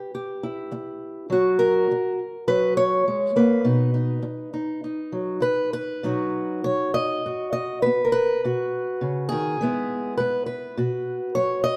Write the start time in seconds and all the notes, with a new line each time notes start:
Already playing: G4 B4
0.15 G4
0.43 E4
0.71 muted steel-string acoustic guitar stroke
1.30 F#3 F#4
1.59 A#4
1.91 muted steel-string acoustic guitar stroke
2.48 F#3 B4
2.77 C#5
3.08 G#3
3.36 A#3 B4
3.64 B2 D#4
3.94 D#4
4.22 muted steel-string acoustic guitar stroke
4.54 D#4
4.84 D#4
5.12 F#3
5.40 B4, muted steel-string acoustic guitar stroke
5.73 B4
6.03 B2 F#3 D#4 F#4
6.64 F#3 C#5
6.94 D#5
7.26 G#2 F#4
7.53 D#5
7.82 B3 B4
8.05 A#4
8.12 B4
8.44 B2 F#4
9.01 C#3
9.29 D#3 G#4
9.61 E3 G#3 B3 E4
10.17 G#3 B4
10.46 B4
10.77 B2 F#4
11.35 F#3 C#5
11.64 D#5